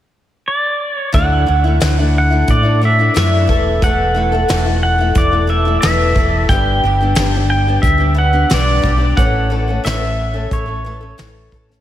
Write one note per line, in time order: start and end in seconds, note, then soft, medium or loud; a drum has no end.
0.48 0.96 D5 medium
0.96 1.14 C#5 medium
1.12 1.44 D2 medium
1.12 1.47 D3 medium
1.12 1.45 F#3 medium
1.12 1.46 A3 medium
1.12 1.47 D4 medium
1.12 1.47 E4 medium
1.12 2.17 F#5 medium
1.12 kick medium
1.12 closed hi-hat medium
1.46 1.78 D2 medium
1.46 1.64 F#3 soft
1.46 1.64 A3 medium
1.46 1.64 D4 medium
1.46 1.63 E4 medium
1.64 1.81 A3 soft
1.64 1.81 D4 soft
1.64 1.81 E4 medium
1.80 2.42 D2 medium
1.80 1.98 D3 medium
1.80 1.98 F#3 medium
1.80 1.99 A3 medium
1.80 1.98 D4 medium
1.80 1.97 E4 medium
1.80 snare loud
1.80 closed hi-hat medium
1.98 2.31 A3 soft
1.98 2.31 D4 soft
1.98 2.29 E4 soft
2.18 2.51 F#5 medium
2.30 2.65 A3 soft
2.30 2.63 D4 soft
2.30 2.62 E4 soft
2.48 3.08 A2 medium
2.48 2.81 D5 medium
2.48 kick medium
2.48 closed hi-hat medium
2.63 2.81 A3 soft
2.63 2.82 D4 soft
2.63 2.81 E4 soft
2.81 2.98 F#3 medium
2.81 2.99 A3 medium
2.81 2.98 D4 medium
2.81 2.97 E4 medium
2.81 3.15 E5 medium
2.99 3.14 A3 soft
2.99 3.15 D4 soft
2.99 3.15 E4 soft
3.14 3.46 F#2 medium
3.14 3.48 D3 medium
3.14 3.47 F#3 medium
3.14 3.46 A3 medium
3.14 3.49 D4 medium
3.14 3.48 E4 medium
3.14 3.83 E5 medium
3.14 snare loud
3.14 closed hi-hat medium
3.47 3.79 E1 medium
3.47 3.82 E3 medium
3.47 3.82 A3 medium
3.47 3.82 E4 medium
3.47 3.82 A4 medium
3.47 kick medium
3.82 4.42 E1 medium
3.82 4.16 E2 medium
3.82 4.16 B2 medium
3.82 4.13 E3 medium
3.82 4.15 A3 medium
3.82 4.15 E4 medium
3.82 4.16 A4 medium
3.82 4.82 F#5 medium
3.82 kick loud
3.82 closed hi-hat medium
4.14 4.32 E3 medium
4.14 4.32 A3 medium
4.14 4.32 E4 medium
4.14 4.31 A4 medium
4.32 4.47 E3 soft
4.32 4.49 A3 soft
4.32 4.49 E4 soft
4.32 4.49 A4 medium
4.48 5.10 E1 medium
4.48 4.65 E2 medium
4.48 4.66 B2 medium
4.48 4.66 E3 medium
4.48 4.65 A3 medium
4.48 4.64 E4 medium
4.48 4.63 A4 medium
4.48 snare loud
4.48 closed hi-hat medium
4.64 5.00 E3 soft
4.64 4.99 A3 soft
4.64 4.99 E4 soft
4.64 4.97 A4 soft
4.83 5.17 F#5 medium
4.98 5.33 E3 soft
4.98 5.32 A3 soft
4.98 5.31 E4 soft
4.98 5.30 A4 soft
5.15 5.76 E1 medium
5.15 5.51 D5 medium
5.15 kick loud
5.15 closed hi-hat medium
5.31 5.46 E3 soft
5.31 5.48 A3 soft
5.31 5.48 E4 soft
5.31 5.49 A4 soft
5.47 5.65 E3 medium
5.47 5.66 A3 medium
5.47 5.65 E4 medium
5.47 5.64 A4 medium
5.47 5.79 E5 medium
5.65 5.82 E3 soft
5.65 5.83 A3 soft
5.65 5.83 E4 soft
5.65 5.82 A4 medium
5.81 6.13 E1 medium
5.81 6.16 E2 medium
5.81 6.16 B2 medium
5.81 6.13 E3 medium
5.81 6.14 A3 medium
5.81 6.15 E4 medium
5.81 6.16 A4 medium
5.81 6.45 E5 medium
5.81 snare loud
5.81 closed hi-hat medium
6.14 6.46 E1 medium
6.14 6.49 E3 medium
6.14 6.49 A3 medium
6.14 6.50 E4 medium
6.14 6.50 A4 medium
6.14 kick medium
6.49 6.79 G1 medium
6.49 6.83 G2 medium
6.49 6.83 D3 medium
6.49 6.82 G3 medium
6.49 6.84 B3 medium
6.49 6.84 D4 medium
6.49 6.84 G4 medium
6.49 7.49 G5 medium
6.49 kick loud
6.49 closed hi-hat medium
6.83 7.13 G1 medium
6.83 7.00 G3 medium
6.83 7.01 B3 medium
6.83 7.00 D4 medium
6.83 6.99 G4 medium
7.00 7.17 G3 soft
7.00 7.17 B3 soft
7.00 7.17 D4 soft
7.00 7.17 G4 soft
7.15 7.77 G1 medium
7.15 7.34 G2 medium
7.15 7.34 D3 medium
7.15 7.34 G3 medium
7.15 7.34 B3 medium
7.15 7.34 D4 medium
7.15 snare loud
7.15 closed hi-hat medium
7.20 7.34 G4 medium
7.36 7.68 G3 soft
7.36 7.68 B3 soft
7.36 7.67 D4 soft
7.36 7.66 G4 soft
7.50 7.81 G5 medium
7.67 8.00 G3 soft
7.67 7.99 B3 soft
7.67 7.98 D4 soft
7.67 7.97 G4 soft
7.82 8.43 D2 medium
7.82 8.14 E5 medium
7.82 kick loud
7.82 closed hi-hat medium
7.98 8.13 G3 soft
7.98 8.14 B3 soft
7.98 8.15 D4 soft
7.98 8.16 G4 soft
8.14 8.32 G3 medium
8.14 8.33 B3 medium
8.14 8.32 D4 medium
8.14 8.32 G4 medium
8.18 8.52 F#5 medium
8.33 8.49 G3 soft
8.33 8.50 B3 soft
8.33 8.49 D4 soft
8.33 8.50 G4 soft
8.49 8.81 B1 medium
8.49 8.84 G2 medium
8.49 8.84 D3 medium
8.49 8.81 G3 medium
8.49 8.82 B3 medium
8.49 8.84 D4 medium
8.49 8.84 G4 medium
8.49 snare loud
8.49 closed hi-hat medium
8.54 9.21 D5 medium
8.82 9.14 B1 medium
8.82 9.00 G3 medium
8.82 8.99 B3 medium
8.82 8.98 D4 medium
8.82 8.97 G4 medium
8.82 kick medium
8.98 9.17 G3 soft
8.98 9.17 B3 soft
8.98 9.17 D4 soft
8.98 9.16 G4 soft
9.17 9.77 A1 medium
9.17 9.51 A2 medium
9.17 9.49 E3 medium
9.17 9.50 A3 medium
9.17 9.50 C#4 medium
9.17 9.51 A4 medium
9.17 9.84 F#5 medium
9.17 kick loud
9.17 closed hi-hat medium
9.50 9.67 E3 medium
9.50 9.68 A3 medium
9.50 9.68 C#4 medium
9.50 9.66 A4 medium
9.68 9.84 A3 soft
9.68 9.84 C#4 soft
9.68 9.84 A4 soft
9.84 10.45 A1 medium
9.84 10.01 A2 medium
9.84 10.01 E3 medium
9.84 10.01 A3 medium
9.84 10.00 C#4 medium
9.84 9.98 A4 medium
9.84 10.54 E5 medium
9.84 snare loud
9.84 closed hi-hat medium
10.00 10.35 A3 soft
10.00 10.33 C#4 soft
10.00 10.32 A4 soft
10.33 10.67 A3 soft
10.33 10.66 C#4 soft
10.33 10.65 A4 soft
10.51 11.12 A1 medium
10.51 11.49 C#5 medium
10.51 kick loud
10.51 closed hi-hat medium
10.66 10.85 A3 soft
10.66 10.85 C#4 soft
10.66 10.84 A4 soft
10.85 11.02 E3 medium
10.85 11.01 A3 medium
10.85 11.01 C#4 medium
10.85 10.99 A4 medium
11.01 11.18 A3 soft
11.01 11.17 C#4 soft
11.01 11.18 A4 medium
11.18 11.49 A1 medium
11.18 11.52 A2 medium
11.18 11.50 E3 medium
11.18 11.52 A3 medium
11.18 11.52 C#4 medium
11.18 11.53 A4 medium
11.18 snare loud
11.18 closed hi-hat medium
11.52 11.81 A1 medium
11.52 11.69 E3 medium
11.52 11.69 A3 medium
11.52 11.68 C#4 medium
11.52 11.67 A4 medium
11.52 kick medium
11.68 11.81 A3 soft
11.68 11.81 C#4 soft
11.68 11.81 A4 soft
11.68 snare soft